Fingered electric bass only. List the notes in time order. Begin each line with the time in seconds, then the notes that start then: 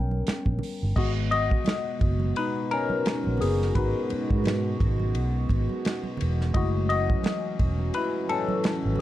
Already playing: B1
0.29 muted fingered electric bass stroke
0.47 A#1
0.83 G1
0.97 G#1
2.02 F#1
3.27 A#1
3.42 F#1
3.76 G#1
4.13 muted fingered electric bass stroke
4.32 G#2
4.82 G#1
5.17 B1
5.51 G#1
6.22 E1
6.56 F#1
7.61 E1
8.85 G#1